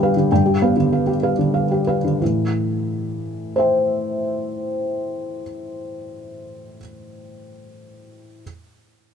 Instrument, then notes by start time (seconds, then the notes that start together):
felt piano
Already playing: G2 D3 B3 G4 B4 F5 G5
0.03 B4 F5
0.16 D3
0.32 G2 G5
0.46 G4
0.62 B3 B4 F5
0.77 D3
0.93 F5
1.07 G4
1.23 B4 F5
1.39 D3
1.54 F5
1.71 G4
1.87 B4 F5
2.04 D3
2.21 A2 E3
3.56 C5 E5 G5